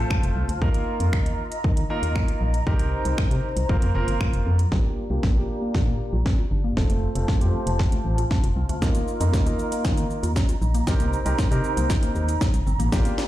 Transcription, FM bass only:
0.23 F1
0.36 C2
0.49 D2
0.62 D#2
1.00 F2
1.13 D#2
1.64 D#3
2.03 D#2
2.41 A#1
2.67 C2
3.05 C2
3.18 C3
3.31 C3
3.56 C2
3.69 F1
3.82 F2
3.95 F1
4.08 G1
4.33 F1
4.46 F2
4.72 A#1
5.10 C2
5.23 A#1
5.75 A#2
6.13 A#1
6.51 G1
6.77 F1
7.15 F1
7.28 F2
7.41 F2
7.67 F1
8.05 A1
8.44 F1
8.56 C2
8.69 D2
8.82 D#2
9.21 F2
9.33 D#2
9.85 D#3
10.23 D#2
10.62 A#1
10.87 C2
11.26 C2
11.38 C3
11.51 C3
11.77 C2
12.16 D#2
12.54 C2
12.67 G1
12.80 A1
12.92 A#1

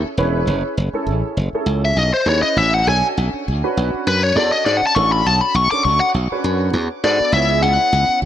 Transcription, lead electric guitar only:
1.85 E5
1.98 D#5
2.14 C5
2.29 C#5
2.42 D#5
2.58 E5
2.74 F#5
2.88 G#5
4.08 B4
4.23 C#5
4.37 D5
4.52 D#5
4.65 D5
4.77 F#5
4.87 A5
4.95 C#6
5.12 B5
5.27 A5
5.41 B5
5.55 C#6
5.71 D6
5.85 C#6
6.00 F#5
7.04 D5
7.34 E5
7.63 F#5

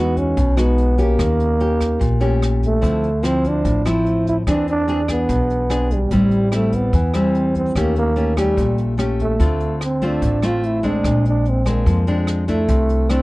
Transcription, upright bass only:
Already playing: E2
0.37 B1
1.19 D#2
2.01 A#1
2.83 D2
3.65 A1
4.47 E2
5.29 B1
6.11 A1
6.93 E2
7.75 D#2
8.57 A#1
9.40 D2
10.22 A1
11.04 A#1
11.86 F2
12.68 C2

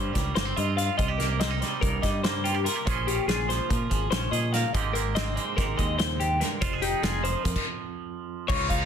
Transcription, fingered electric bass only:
Already playing: G2
0.15 C#2
0.36 G1
0.57 G2
0.99 C2
1.83 C2
2.04 G2
2.87 A#1
3.28 A#1
3.71 A#2
3.91 G#1
4.11 A#1
4.32 A#2
4.75 G#1
5.58 G#1
5.79 D#2
6.62 F1
7.03 F1
7.45 F2
8.50 C#2

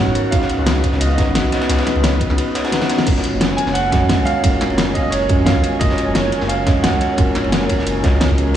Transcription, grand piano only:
Already playing: F#5
0.31 F5
1.00 D#5
1.07 F5
1.14 D#5
3.57 G#5
3.74 F#5
4.25 F5
4.94 D#5
4.98 F5
5.03 D#5
5.11 C#5
5.45 F5
5.79 D#5
6.14 C#5
6.48 F5
6.82 F#5

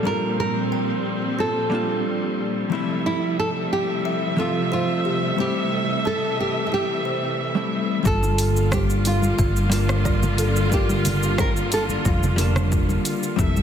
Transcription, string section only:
Already playing: A#2 F3 G3
0.05 C4
2.72 C3 F3 A3 E5
5.39 E3
8.05 D3 G3 A#3 F4
13.38 C3 F3 G3 E5

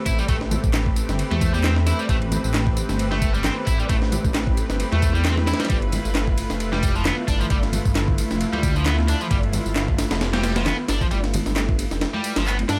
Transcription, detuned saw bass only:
0.06 A1
0.29 A1
0.64 A1
1.09 G1
1.31 E2
2.09 A1
2.44 A1
2.89 G1
3.67 A1
3.90 A1
4.25 A1
4.70 G1
4.92 E2
5.70 G1
6.05 G1
6.50 F1
7.28 G1
7.50 G1
7.85 G1
8.31 F1
8.53 D2
9.31 G1
9.66 G1
10.11 F1
10.89 G1
11.12 G1
11.47 G1
11.91 F1
12.37 G1
12.69 G2

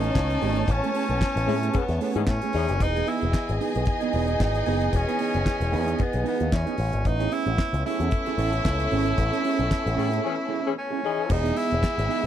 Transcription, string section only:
Already playing: C#4 C#5 A5
2.80 G#4 D#5 G#5
7.84 C#4 A4 E5
11.29 B3 G#4 E5

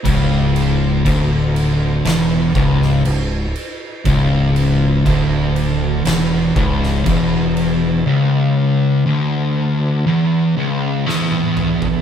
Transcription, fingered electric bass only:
0.06 C#1
1.06 D1
2.05 E1
2.55 C#1
3.06 C#1
4.05 C#1
5.06 D1
6.06 E1
6.56 C#1
7.06 E1

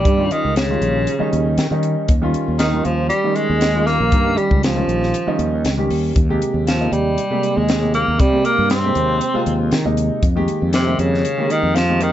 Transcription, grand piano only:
0.17 D#3 G3 C#4 F4
0.69 D#3 G3 C#4 F4
1.19 D#3 G3 C#4 D#4
1.32 D#5
1.58 G5
1.71 D#3 G3 C#4 D#4
2.22 D#3 G3 C#4 F4
2.74 D#3 G3 C#4 F4
3.24 D#3 G3 C#4 D#4
3.74 D#3 G3 C#4 F4
4.24 D#3 G3 C#4 G4
4.75 D#3 G3 C#4 F4
5.27 D#3 G3 C#4 D#4
5.78 D#3 G3 C#4 G4
6.29 C3 G#3 A#3 G4
6.80 C3 G#3 A#3 D#4
7.30 C3 G#3 A#3 G4
7.81 C3 G#3 A#3 G4
8.32 C3 G#3 A#3 G4
8.84 C3 G#3 A#3 G4
9.34 C3 G#3 A#3 F4
9.84 C3 G#3 A#3 D#4
10.36 D#3 G#3 A#3 G4
10.86 D#3 G#3 A#3 G4
11.38 D#3 G#3 A#3 G4
11.89 D#3 G#3 A#3 G4

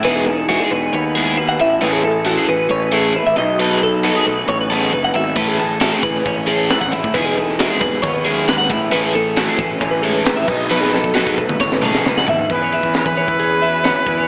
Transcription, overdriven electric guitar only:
0.03 G#3 B3 E4 G#4
0.26 muted overdriven electric guitar stroke
0.49 G#3 B3 E4 G#4
0.72 muted overdriven electric guitar stroke
0.93 muted overdriven electric guitar stroke
1.16 G#3 B3 E4 G#4
1.37 muted overdriven electric guitar stroke
1.60 muted overdriven electric guitar stroke
1.81 A3 C#4 E4 A4
2.03 muted overdriven electric guitar stroke
2.25 A3 C#4 E4 A4
2.49 muted overdriven electric guitar stroke
2.70 muted overdriven electric guitar stroke
2.92 A3 C#4 E4 A4
3.14 muted overdriven electric guitar stroke
3.37 muted overdriven electric guitar stroke
3.60 F#3 B3 D#4 A4
3.81 muted overdriven electric guitar stroke
4.04 F#3 B3 D#4 A4
4.27 muted overdriven electric guitar stroke
4.48 muted overdriven electric guitar stroke
4.70 F#3 B3 D#4 A4
4.93 muted overdriven electric guitar stroke
5.14 muted overdriven electric guitar stroke
5.36 A3 C#4 E4 A4
5.59 muted overdriven electric guitar stroke
5.80 A3 C#4 E4 A4
6.04 muted overdriven electric guitar stroke
6.26 muted overdriven electric guitar stroke
6.47 A3 C#4 E4 A4
6.70 muted overdriven electric guitar stroke
6.92 muted overdriven electric guitar stroke
7.15 G#3 B3 E4 G#4
7.38 muted overdriven electric guitar stroke
7.59 G#3 B3 E4 G#4
7.82 muted overdriven electric guitar stroke
8.03 muted overdriven electric guitar stroke
8.25 G#3 B3 E4 G#4
8.48 muted overdriven electric guitar stroke
8.71 muted overdriven electric guitar stroke
8.92 A3 C#4 E4 A4
9.15 muted overdriven electric guitar stroke
9.37 A3 C#4 E4 A4
9.59 muted overdriven electric guitar stroke
9.82 muted overdriven electric guitar stroke
10.04 A3 C#4 E4 A4
10.26 muted overdriven electric guitar stroke
10.48 muted overdriven electric guitar stroke
10.70 F#3 B3 D#4 A4
10.93 muted overdriven electric guitar stroke
11.14 F#3 B3 D#4 A4
11.38 muted overdriven electric guitar stroke
11.60 muted overdriven electric guitar stroke
11.82 F#3 B3 D#4 A4
12.05 muted overdriven electric guitar stroke
12.27 muted overdriven electric guitar stroke

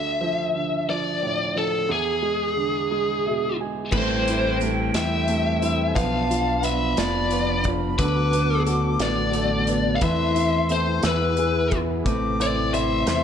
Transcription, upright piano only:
Already playing: D2
0.21 F3
0.54 D3
0.89 F3
1.22 A2
1.55 F3
1.89 E2
2.22 G#3
2.56 D3
2.91 G#3
3.26 B2 E5
3.61 G#3 G#5
3.94 A3
4.29 E4
4.62 A3
4.95 E4
5.29 A3
5.63 E4
5.96 B3
6.30 F4
6.63 B3
6.98 F4
7.32 B3
7.68 F4
8.00 D3
8.33 B3
8.67 F#4
9.01 B3
9.35 A3
9.68 B3
10.02 E3
10.36 E4
10.71 C4
11.04 E3
11.38 G#4
11.74 B3
12.07 A3
12.40 C5
12.74 E4
13.07 C5

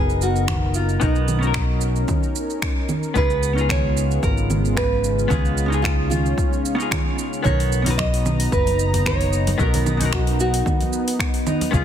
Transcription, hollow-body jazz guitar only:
Already playing: B3 C#4 D#4 F#4 A#4
1.00 B3 C#4 D#4 A#4
1.39 B3 C#4 D#4
1.45 F#4 A#4
3.14 B3 C#4 D#4 F4
3.19 G#4
3.53 B3 C#4 D#4
3.59 F4 G#4
5.28 B3 C#4 F4 G#4
5.66 B3 C#4
5.70 D#4 F4
5.74 G#4
6.75 B3 C#4 D#4
6.81 F4 G#4
7.42 B3 C#4 D#4
7.47 A#4
7.82 B3 C#4
7.86 D#4 F#4 B4
9.58 B3 C#4 D#4 F#4 A#4
9.97 B3 C#4
10.01 D#4 F#4 A#4
11.71 B3 C#4 F4
11.75 G#4

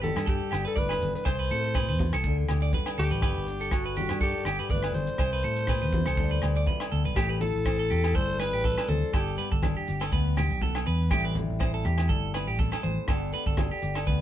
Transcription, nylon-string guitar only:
Already playing: G2 D3 D4 G4
0.04 B3
0.27 G2
0.52 D4
0.77 A2
1.02 B2
1.26 C3
1.52 C4
1.76 B2
2.01 C3
2.26 D3
2.51 G4
2.76 G3
3.01 D4
3.24 G2
3.49 D4
3.74 D3
3.99 G3
4.22 G2
4.48 D4
4.72 A2
4.96 B2
5.21 C3
5.69 B2
5.94 C3
6.18 D3 G3 D4 G4
6.43 G4
6.67 C3
6.92 B2
7.17 A2
7.41 muted nylon-string guitar stroke
7.65 C4
8.14 G3
8.40 C4
8.65 G3
8.90 C4
9.13 G2
9.39 B3
9.64 D4
9.88 G4
10.14 B3
10.38 B3
10.50 D4
10.61 B3
11.11 A2 E3 G3 C4 G4
11.35 G3
11.60 C4
11.86 G4
12.10 G3
12.34 C4
12.59 B2
12.83 A2
13.08 D3 B3 D4 G4, muted nylon-string guitar stroke
13.33 B3
13.58 D4
13.83 G4
14.07 B3

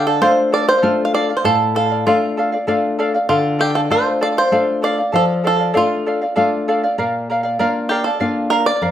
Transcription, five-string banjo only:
0.07 A4
0.22 C5
0.54 D5
0.69 C5
1.05 F5
1.15 D5
1.37 C5
1.45 A4
1.76 A4
2.07 F4
3.29 F4
3.61 G4
3.75 A4
3.92 C5
4.23 D5
4.38 C5
4.84 D5
5.16 A4
5.47 A4
5.77 F4
7.89 G4
8.04 A4
8.50 A#4
8.66 D5

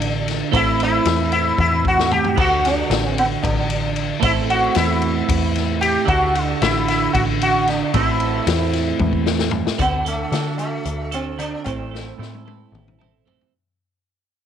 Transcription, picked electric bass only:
Already playing: A1
0.53 A1
1.06 E2
1.58 E2
2.38 D2
2.90 A1
3.44 A1
4.22 A1
4.76 E2
5.29 E2
6.08 D2
6.62 A1
7.14 A1
7.94 A1
8.47 E2
9.00 E2
9.79 D2
10.32 D3
10.85 D2
11.66 A1
12.19 A2
12.72 A1

